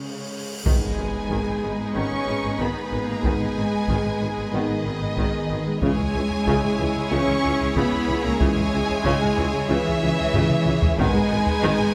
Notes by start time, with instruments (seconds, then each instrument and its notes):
Already playing: cello section C#3, analog synth pad G#3 C#4 G#4 C#5, french horn section C#4, viola section G#4 C#5, cymbal swell
0.66 tuba G#1, double bass section G#1, viola section D#3 D#4, trombone section D#3 B3, french horn section G#3, cello section G#3, analog synth pad G#3 B3 G#4 D#5, violin section G#4 B4 G#5, taiko, impact
0.82 double bass section G#1, viola section G#3
0.98 tuba G#1, double bass section G#1, viola section D#3
1.30 tuba G#1, double bass section G#1, viola section D#3, taiko
1.47 double bass section G#1, viola section G#3
1.63 double bass section G#1, tuba G#1, viola section D#3
1.79 double bass section G#1, viola section G#3
1.94 tuba G#1, double bass section G#1, viola section D#3, trombone section D#3 B3, cello section C#4, french horn section C#4, violin section C#6
2.12 double bass section G#1, viola section G#3
2.27 double bass section G#1, tuba G#1, viola section D#3
2.44 double bass section G#1, viola section G#3
2.59 double bass section G#1, tuba G#1, viola section D#3, cello section B3, french horn section B3, violin section B5, taiko
2.92 tuba G#1, double bass section G#1, viola section D#3
3.08 double bass section G#1, viola section G#3, cello section A#3, french horn section A#3, violin section A#5
3.23 double bass section G#1, tuba G#1, viola section D#3, trombone section D#3 B3, cello section G#3, french horn section G#3, violin section G#5, taiko
3.40 double bass section G#1, viola section G#3
3.57 tuba G#1, double bass section G#1, viola section D#3
3.88 tuba G#1, double bass section G#1, viola section D#3, taiko
4.05 double bass section G#1, viola section G#3
4.21 double bass section G#1, tuba G#1, viola section D#3
4.37 double bass section G#1, viola section G#3
4.51 double bass section G#1, tuba G#1, trombone section D#3 B3, viola section D#3, cello section D#3, french horn section D#3, violin section D#5
4.69 double bass section G#1, viola section G#3
4.85 double bass section G#1, tuba G#1, viola section D#3
5.01 double bass section G#1, viola section G#3
5.17 double bass section G#1, tuba G#1, viola section D#3, taiko
5.49 double bass section G#1, tuba G#1, viola section D#3
5.65 double bass section G#1, viola section G#3
5.80 double bass section C#2, tuba C#2, viola section C#3 E4, trombone section E3 C#4, french horn section G#3, analog synth pad G#3 C#4 G#4 E5, cello section G#3, violin section G#4 C#5 G#5, taiko
5.98 double bass section C#2, viola section G#3, taiko low
6.14 double bass section C#2, tuba C#2, viola section E3
6.31 taiko low
6.46 double bass section C#2, tuba C#2, viola section C#3, taiko
6.63 double bass section C#2, viola section G#3
6.78 double bass section C#2, tuba C#2, viola section E3, taiko low
6.95 double bass section C#2, viola section G#3
7.11 tuba C#2, double bass section C#2, viola section C#3, trombone section E3 C#4, cello section C#4, french horn section C#4, violin section C#6
7.27 double bass section C#2, viola section G#3
7.44 tuba C#2, double bass section C#2, viola section E3
7.60 double bass section C#2, viola section G#3
7.75 tuba C#2, double bass section C#2, viola section C#3, french horn section B3, cello section B3, violin section B5, taiko
7.92 taiko low
8.08 double bass section C#2, tuba C#2, viola section E3
8.24 double bass section C#2, viola section G#3, cello section A#3, french horn section A#3, violin section A#5
8.40 tuba C#2, double bass section C#2, viola section C#3, trombone section E3 C#4, cello section G#3, french horn section G#3, violin section G#5, taiko
8.56 double bass section C#2, viola section G#3, taiko low
8.72 tuba C#2, double bass section C#2, viola section E3
8.89 taiko low
9.04 tuba C#2, double bass section C#2, viola section C#3, taiko
9.21 double bass section C#2, viola section G#3
9.37 tuba C#2, double bass section C#2, viola section E3, taiko low
9.53 double bass section C#2, viola section G#3
9.68 tuba C#2, double bass section C#2, viola section C#3, trombone section E3 C#4, cello section E3, french horn section E3, violin section E5
9.86 double bass section C#2, viola section G#3
10.02 tuba C#2, double bass section C#2, viola section E3
10.18 double bass section C#2, viola section G#3
10.34 tuba C#2, double bass section C#2, viola section C#3, taiko low-mid
10.50 taiko mid
10.66 tuba C#2, double bass section C#2, viola section E3, taiko mid
10.82 double bass section C#2, viola section G#3, taiko low
10.98 tuba G#1, double bass section G#1, viola section D#3 D#4, trombone section D#3 B3, cello section G#3, french horn section G#3, analog synth pad G#3 B3 G#4 D#5, violin section G#4 B4 G#5, taiko
11.14 double bass section G#1, viola section G#3, taiko low
11.30 double bass section G#1, tuba G#1, viola section D#3
11.47 taiko low
11.63 tuba G#1, double bass section G#1, viola section D#3, taiko
11.79 double bass section G#1, viola section G#3